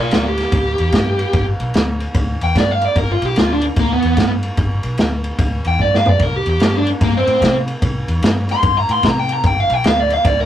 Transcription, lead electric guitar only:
0.00 0.12 F4 medium
0.00 0.12 A#4 medium
0.14 0.25 F4 medium
0.14 0.28 A#4 medium
0.28 1.45 G4 medium
2.44 2.56 G5 medium
2.57 2.71 D5 medium
2.71 2.85 F5 medium
2.85 2.97 D5 medium
2.98 3.10 A#4 medium
3.12 3.25 F4 medium
3.25 3.37 G4 medium
3.39 3.51 F4 medium
3.53 3.64 D4 medium
3.79 3.92 A#3 medium
3.92 4.31 B3 loud
5.67 5.80 G5 loud
5.81 5.93 D5 medium
5.96 6.08 F5 medium
6.09 6.21 D5 medium
6.23 6.36 A#4 medium
6.36 6.48 G4 medium
6.50 6.61 G4 medium
6.63 6.75 G4 medium
6.76 6.88 D4 medium
7.03 7.17 A#3 loud
7.17 7.55 C4 loud
8.52 8.77 C6 loud
8.78 8.90 A#5 loud
8.92 9.05 C6 medium
9.05 9.19 A#5 loud
9.19 9.31 G5 medium
9.33 9.46 A#5 medium
9.46 9.60 G5 loud
9.60 9.74 F5 medium
9.74 9.85 G5 loud
9.87 10.00 F5 loud
10.00 10.12 D5 loud
10.14 10.26 F5 medium
10.27 10.39 D5 loud
10.40 10.46 A#4 medium

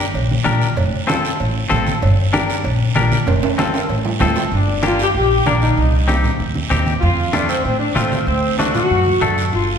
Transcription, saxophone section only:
4.54 4.82 D4 medium
4.85 4.99 F4 medium
5.02 5.08 G4 medium
5.16 5.45 G4 loud
5.46 5.53 D4 medium
5.62 6.06 D#4 medium
7.00 7.30 F4 medium
7.33 7.49 D4 medium
7.48 7.63 C4 medium
7.64 7.79 C4 medium
7.79 7.94 D4 medium
7.96 8.25 C4 medium
8.27 8.56 C4 medium
8.57 8.74 D4 medium
8.74 9.33 F#4 medium
9.53 9.78 F4 medium

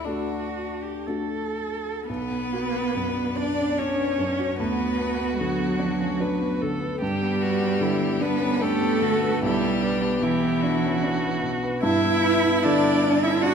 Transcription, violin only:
0.05 1.07 D4 soft
2.09 3.37 B4 medium
3.36 3.80 D5 medium
3.78 4.58 C#5 medium
4.59 5.38 B4 medium
5.39 6.59 F#4 soft
7.01 8.23 G4 medium
8.22 8.63 B4 medium
8.62 9.43 A4 medium
9.44 10.25 G4 medium
10.23 11.42 E4 medium
11.83 12.65 E5 medium
12.63 13.25 D5 medium
13.23 13.44 E5 medium
13.42 13.54 F#5 medium

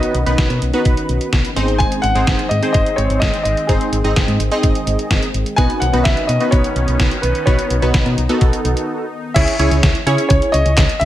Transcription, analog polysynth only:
0.00 0.19 B3 medium
0.00 0.19 D#4 medium
0.00 0.19 F#4 medium
0.00 0.19 B4 medium
0.26 0.64 B3 medium
0.26 0.64 D#4 medium
0.26 0.64 F#4 medium
0.26 0.64 B4 medium
0.74 1.50 B3 medium
0.74 1.50 D#4 medium
0.74 1.50 F#4 medium
0.74 1.50 B4 medium
1.56 2.04 C4 medium
1.56 2.04 D#4 medium
1.56 2.04 G#4 medium
1.56 2.04 C5 loud
2.15 2.53 C4 medium
2.15 2.53 D#4 medium
2.15 2.53 G#4 medium
2.15 2.53 C5 medium
2.63 3.39 C4 medium
2.63 3.39 D#4 medium
2.63 3.39 G#4 medium
2.63 3.39 C5 medium
3.69 3.97 C4 medium
3.69 3.97 D#4 medium
3.69 3.97 G#4 medium
3.69 3.97 C5 medium
4.04 4.42 C4 medium
4.04 4.42 D#4 medium
4.04 4.42 G#4 medium
4.04 4.42 D#5 medium
4.52 5.28 C4 medium
4.52 5.28 D#4 medium
4.52 5.28 G#4 medium
4.52 5.28 D#5 loud
5.58 5.86 B3 medium
5.58 5.86 D#4 medium
5.58 5.86 F#4 medium
5.58 5.86 B4 medium
5.93 6.31 B3 medium
5.93 6.31 D#4 medium
5.93 6.31 F#4 medium
5.93 6.31 B4 medium
6.41 7.17 B3 medium
6.41 7.17 D#4 medium
6.41 7.17 F#4 medium
6.41 7.17 B4 medium
7.47 7.75 B3 medium
7.47 7.75 D#4 medium
7.47 7.75 F#4 medium
7.47 7.75 B4 medium
7.82 8.20 B3 medium
7.82 8.20 D#4 medium
7.82 8.20 F#4 medium
7.82 8.20 B4 medium
8.29 9.05 B3 medium
8.29 9.05 D#4 medium
8.29 9.05 F#4 medium
8.29 9.05 A4 loud
9.36 9.55 C#4 medium
9.36 9.55 E4 medium
9.36 9.55 G#4 medium
9.36 9.55 C#5 medium
9.59 9.97 C#4 medium
9.59 9.97 E4 medium
9.59 9.97 G#4 medium
9.59 9.97 C#5 medium
10.07 10.83 C#4 medium
10.07 10.83 E4 medium
10.07 10.83 G#4 medium
10.07 10.83 C#5 loud

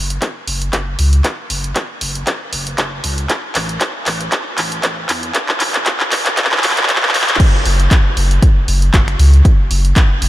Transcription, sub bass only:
0.00 0.18 F#1 medium
0.47 0.69 F#1 loud
0.73 0.95 F#1 medium
0.99 1.21 C#2 loud
1.50 1.72 F#1 loud
2.01 2.23 F#1 medium
2.53 2.74 F#1 medium
2.78 3.00 F#1 medium
3.04 3.26 C#2 loud
3.55 3.77 A1 loud
4.06 4.28 A1 medium
4.58 4.80 A1 loud
4.83 5.05 A1 medium
5.09 5.31 E2 loud
5.60 5.82 E1 loud
6.11 6.33 E1 medium
6.63 6.90 E1 medium
6.89 7.10 D1 medium
7.14 7.36 E1 medium
7.66 7.87 F#1 loud
8.17 8.39 F#1 medium
8.68 8.90 F#1 loud
8.94 9.16 F#1 medium
9.19 9.41 C#2 loud
9.71 9.92 F#1 loud
10.22 10.29 F#1 medium

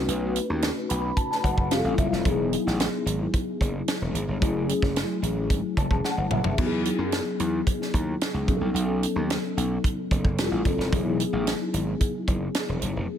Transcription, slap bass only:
0.08 0.38 B1 loud
0.50 0.69 D#2 medium
0.90 1.10 B1 medium
1.44 1.70 F#1 medium
1.70 1.80 F1 medium
1.84 1.94 A1 medium
1.98 2.08 F#1 medium
2.12 2.22 F1 medium
2.25 2.55 E1 loud
2.67 2.86 A1 medium
3.06 3.26 G#1 medium
3.61 3.80 F#1 loud
4.01 4.11 E1 medium
4.14 4.24 G#1 medium
4.28 4.38 G1 medium
4.42 4.72 F#1 loud
4.83 5.02 F#1 medium
5.22 5.50 A1 medium
5.50 5.60 G#1 medium
5.77 5.87 F#1 medium
5.90 6.01 E1 medium
6.17 6.27 G1 medium
6.30 6.41 F#1 medium
6.44 6.54 F1 medium
6.58 6.88 E2 loud
6.98 7.19 F#2 medium
7.40 7.60 E2 medium
7.94 8.14 D#2 medium
8.34 8.48 C#2 medium
8.48 8.58 B1 loud
8.61 8.71 C2 medium
8.74 9.04 B1 loud
9.16 9.36 D#2 medium
9.57 9.77 B1 medium
10.11 10.38 F#1 medium
10.38 10.48 F1 loud
10.51 10.61 A1 medium
10.65 10.75 F#1 medium
10.78 10.88 F1 medium
10.92 11.22 E1 loud
11.33 11.53 A1 medium
11.73 11.93 G#1 medium
12.27 12.47 F#1 medium
12.69 12.79 E1 medium
12.82 12.92 F#1 medium
12.96 13.06 F1 medium

